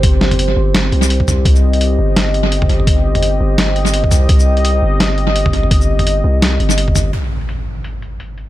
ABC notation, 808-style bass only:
X:1
M:4/4
L:1/8
Q:"Swing 16ths" 1/4=169
K:Cm
V:1 name="808-style bass" clef=bass
G,,,3 G,,,2 C,,3 | C,,3 G,,,4 G,,,- | G,,,3 G,,,4 C,, | C,,3 G,,,4 G,,,- |
G,,,3 C,,2 G,,,3 | z8 |]